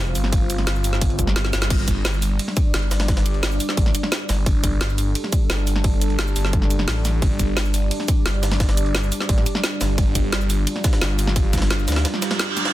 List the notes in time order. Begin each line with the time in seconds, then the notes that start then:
Already playing: A1 G3 C4 F4
0.07 ride
0.15 G1, open hi-hat, ride, shaker
0.24 snare
0.33 kick, closed hi-hat, ride
0.50 closed hi-hat, ride, shaker
0.58 snare, ride
0.67 snare, closed hi-hat, ride
0.76 shaker
0.84 open hi-hat, ride, shaker
0.93 snare
1.01 kick, closed hi-hat, ride
1.10 ride
1.19 kick, closed hi-hat, shaker
1.27 snare
1.36 snare, closed hi-hat, ride
1.45 snare
1.53 G1, snare, open hi-hat, ride, shaker
1.62 snare, shaker
1.70 G1 G3 D4 D5, kick, closed hi-hat, crash, ride
1.88 G1, kick, closed hi-hat, ride, shaker
2.05 snare, closed hi-hat, ride
2.14 shaker
2.22 open hi-hat, ride, shaker
2.39 closed hi-hat, ride
2.48 snare
2.57 kick, closed hi-hat, ride, shaker
2.74 G1, snare, closed hi-hat, ride
2.83 ride
2.91 snare, open hi-hat, ride, shaker
3.00 snare, ride
3.08 kick, snare, closed hi-hat, ride
3.17 snare, ride
3.26 closed hi-hat, ride, shaker
3.34 ride
3.43 snare, closed hi-hat, ride
3.52 shaker
3.60 open hi-hat, ride, shaker
3.69 snare
3.77 A1, kick, closed hi-hat, ride
3.86 snare, ride
3.95 closed hi-hat, ride, shaker
4.03 snare
4.12 snare, closed hi-hat, ride
4.29 G1, snare, open hi-hat, ride, shaker
4.46 G1 A4, kick, closed hi-hat, ride
4.64 G1, kick, closed hi-hat, ride, shaker
4.81 snare, closed hi-hat, ride
4.89 shaker
4.98 open hi-hat, ride, shaker
5.15 closed hi-hat, ride
5.24 snare
5.33 kick, closed hi-hat, ride, shaker
5.50 G1, snare, closed hi-hat, ride
5.58 ride
5.67 open hi-hat, ride, shaker
5.76 snare
5.84 kick, closed hi-hat, ride
6.01 closed hi-hat, ride, shaker
6.10 ride
6.19 snare, closed hi-hat, ride
6.27 shaker
6.36 G1, open hi-hat, ride, shaker
6.45 snare
6.53 kick, closed hi-hat
6.62 snare
6.70 closed hi-hat, ride, shaker
6.79 snare
6.88 A1, snare, closed hi-hat, ride
7.05 snare, open hi-hat, ride, shaker
7.22 G1 D5, kick, closed hi-hat, ride
7.39 G1, kick, closed hi-hat, ride, shaker
7.57 snare, closed hi-hat, ride
7.65 shaker
7.74 open hi-hat, ride, shaker
7.91 closed hi-hat, ride
8.00 snare
8.08 kick, closed hi-hat, ride, shaker
8.26 G1, snare, closed hi-hat, ride
8.34 ride
8.43 snare, open hi-hat, ride, shaker
8.52 snare, ride
8.60 kick, snare, closed hi-hat, ride
8.69 snare, ride
8.77 closed hi-hat, ride, shaker
8.86 ride
8.95 snare, closed hi-hat, ride
9.03 shaker
9.12 open hi-hat, ride, shaker
9.20 snare
9.29 A1, kick, closed hi-hat, ride
9.38 snare, ride
9.46 closed hi-hat, ride, shaker
9.55 snare
9.64 snare, closed hi-hat, ride
9.81 G1, snare, open hi-hat, ride, shaker
9.98 G1 F4, kick, closed hi-hat, ride
10.15 G1, kick, closed hi-hat, ride, shaker
10.32 snare, closed hi-hat, ride
10.41 shaker
10.50 open hi-hat, ride, shaker
10.67 closed hi-hat, ride
10.76 snare
10.84 kick, snare, closed hi-hat, ride, shaker
10.93 snare, ride
11.01 G1, snare, closed hi-hat, ride
11.10 ride
11.19 open hi-hat, ride, shaker
11.27 snare
11.36 kick, closed hi-hat, ride
11.53 kick, snare, closed hi-hat, ride, shaker
11.57 snare, ride
11.62 snare, ride
11.70 snare, closed hi-hat, ride
11.79 shaker
11.88 D2, snare, open hi-hat, ride, shaker
11.92 snare, ride
11.96 snare, ride
12.05 snare, closed hi-hat, ride, reverse cymbal
12.14 snare
12.22 snare, closed hi-hat, ride, shaker
12.31 snare, ride
12.39 snare, closed hi-hat, ride
12.57 snare, open hi-hat, ride, shaker
12.65 snare, ride